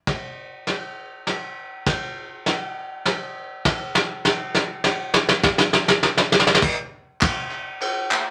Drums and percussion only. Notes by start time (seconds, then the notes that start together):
0.07 kick, snare, ride
0.67 snare, ride
1.27 snare, ride
1.86 kick, snare, ride
2.46 snare, ride
3.05 snare, ride
3.65 kick, snare, ride
3.95 snare
4.25 snare, ride
4.54 snare
4.84 snare, ride
5.14 snare
5.29 snare
5.43 kick, snare
5.58 snare
5.73 snare
5.88 snare
6.03 snare
6.17 snare
6.32 snare
6.39 snare
6.47 snare
6.55 snare
6.62 kick, crash
7.21 kick, clap, ride
7.52 clap
7.81 clap, ride
8.11 clap